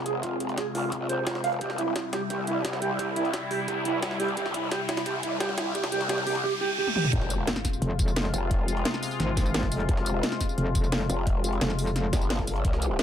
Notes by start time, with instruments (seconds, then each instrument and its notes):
Already playing: analog synth pad C3 G#3 F4, riser
0.06 wobble bass F1, clean electric guitar G#4, closed hi-hat
0.23 clean electric guitar F4, kick, closed hi-hat
0.40 closed hi-hat
0.49 closed hi-hat
0.58 clean electric guitar G#4, kick, snare, closed hi-hat
0.75 wobble bass C2, clean electric guitar F4, closed hi-hat, open hi-hat
0.92 kick, closed hi-hat
1.09 clean electric guitar C5, closed hi-hat
1.27 wobble bass F1, clean electric guitar F4, kick, snare, closed hi-hat
1.35 snare
1.44 clean electric guitar F5, closed hi-hat, open hi-hat
1.53 closed hi-hat
1.61 wobble bass C2, analog synth pad G3 E4, clean electric guitar G4, kick, closed hi-hat
1.70 snare
1.78 clean electric guitar E4, closed hi-hat
1.96 kick, snare, closed hi-hat
2.13 clean electric guitar G4, snare, closed hi-hat
2.30 wobble bass C2, clean electric guitar G4, kick, closed hi-hat
2.47 clean electric guitar E4, closed hi-hat
2.65 kick, snare, closed hi-hat
2.73 snare
2.82 wobble bass C2, clean electric guitar G4, closed hi-hat
2.99 clean electric guitar G4, kick, closed hi-hat
3.16 clean electric guitar E4, closed hi-hat
3.25 closed hi-hat
3.34 kick, snare, closed hi-hat
3.51 clean electric guitar G4, closed hi-hat, open hi-hat
3.68 wobble bass E2, clean electric guitar G4, kick, closed hi-hat
3.85 clean electric guitar E4, closed hi-hat
4.02 kick, snare, closed hi-hat
4.11 snare
4.20 wobble bass C2, clean electric guitar G4, closed hi-hat, open hi-hat
4.28 closed hi-hat
4.37 wobble bass C2, clean electric guitar G4, kick, closed hi-hat
4.46 snare
4.54 clean electric guitar E4, kick, closed hi-hat
4.71 clean electric guitar G4, kick, snare, closed hi-hat
4.89 clean electric guitar E4, kick, snare, closed hi-hat
4.97 snare, closed hi-hat
5.06 wobble bass C2, clean electric guitar G4, kick, closed hi-hat
5.23 clean electric guitar E4, kick, closed hi-hat
5.40 clean electric guitar G4, kick, snare, closed hi-hat
5.49 snare
5.58 wobble bass C2, clean electric guitar E4, kick, snare, closed hi-hat
5.75 clean electric guitar G4, kick, closed hi-hat
5.84 kick, snare, closed hi-hat
5.92 clean electric guitar G4, kick, closed hi-hat
6.01 kick, closed hi-hat
6.09 wobble bass C2, clean electric guitar G4, kick, snare, closed hi-hat
6.18 kick
6.27 wobble bass C2, clean electric guitar G4, kick, closed hi-hat, open hi-hat
6.35 kick
6.44 clean electric guitar G4, reverse cymbal
6.61 clean electric guitar G4
6.78 clean electric guitar G4
6.87 high tom
6.96 clean electric guitar G4, mid tom
7.04 mid tom
7.13 wobble bass F1, analog synth pad C3 G#3 F4, kick, closed hi-hat, impact
7.22 snare
7.30 closed hi-hat, tambourine
7.47 snare, closed hi-hat
7.56 snare
7.65 kick, snare, closed hi-hat, tambourine
7.73 tambourine
7.82 wobble bass F1, closed hi-hat
7.99 kick, closed hi-hat, tambourine
8.08 tambourine
8.16 snare, closed hi-hat
8.25 snare
8.34 wobble bass F1, closed hi-hat, tambourine
8.51 kick, closed hi-hat
8.68 closed hi-hat, tambourine
8.77 closed hi-hat
8.85 snare, closed hi-hat
8.94 snare
9.03 closed hi-hat, open hi-hat, tambourine
9.11 tambourine
9.20 wobble bass G#1, snare, closed hi-hat
9.37 kick, snare, closed hi-hat, tambourine
9.46 tambourine
9.54 snare, closed hi-hat
9.63 kick, snare
9.71 wobble bass F1, closed hi-hat, open hi-hat, tambourine
9.80 closed hi-hat
9.89 wobble bass F1, kick, closed hi-hat
9.97 snare
10.06 closed hi-hat, tambourine
10.23 snare, closed hi-hat
10.32 snare
10.41 kick, snare, closed hi-hat, tambourine
10.49 tambourine
10.58 wobble bass F1, closed hi-hat
10.75 kick, closed hi-hat, tambourine
10.84 tambourine
10.92 snare, closed hi-hat
11.01 snare
11.09 wobble bass F1, closed hi-hat, tambourine
11.27 kick, closed hi-hat
11.44 closed hi-hat, tambourine
11.53 closed hi-hat
11.61 wobble bass F1, snare, closed hi-hat
11.70 snare
11.79 closed hi-hat, open hi-hat, tambourine
11.87 tambourine
11.96 snare, closed hi-hat
12.13 wobble bass G1, kick, snare, closed hi-hat, tambourine
12.22 tambourine
12.30 snare, closed hi-hat
12.39 kick, snare
12.47 closed hi-hat, open hi-hat, tambourine
12.56 closed hi-hat
12.65 wobble bass C2, analog synth pad E3 C4 G4, kick, closed hi-hat
12.73 snare
12.82 closed hi-hat, tambourine
12.99 snare, closed hi-hat